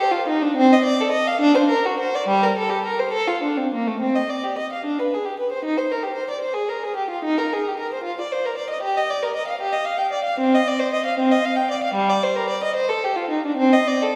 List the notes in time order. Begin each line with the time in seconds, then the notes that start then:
0.00 G4
0.12 F4
0.28 D#4
0.42 D4
0.57 C4
0.73 D#5
0.85 D5
1.01 A4
1.12 D#5
1.27 F5
1.41 D4
1.54 C5
1.69 A#4
1.85 F#4
2.00 C5
2.15 D5
2.28 G3
2.43 A#4
2.58 A4
2.70 G4
2.85 A#4
2.99 C5
3.13 A4
3.27 F4
3.43 D4
3.57 C4
3.74 A#3
3.87 A3
4.01 C4
4.15 D#5
4.30 D5
4.44 G4
4.58 D#5
4.73 F5
4.85 D4
4.99 B4
5.14 G#4
5.25 G4
5.39 B4
5.52 C5
5.65 D#4
5.77 C5
5.92 A#4
6.03 G4
6.16 C5
6.31 D5
6.41 C5
6.54 G#4
6.69 A#4
6.84 G#4
6.97 G4
7.10 F4
7.25 D#4
7.38 A#4
7.53 G#4
7.68 G4
7.79 A#4
7.94 C5
8.04 F4
8.21 D5
8.32 C5
8.46 A#4
8.57 D5
8.70 D#5
8.82 G4
8.97 D#5
9.10 D5
9.23 A#4
9.36 D#5
9.48 F5
9.61 G4
9.73 D#5
9.85 F5
9.98 G5
10.13 D5
10.25 F5
10.40 C4
10.55 D#5
10.68 D5
10.79 C5
10.94 D#5
11.06 F5
11.19 C4
11.32 D#5
11.45 F5
11.56 G5
11.71 D5
11.84 F5
11.94 G3
12.10 D5
12.23 C5
12.36 A#4
12.50 D5
12.64 D#5
12.76 C5
12.89 A4
13.04 G4
13.16 F4
13.31 D#4
13.46 D4
13.58 C4
13.73 D#5
13.88 D5
14.03 A4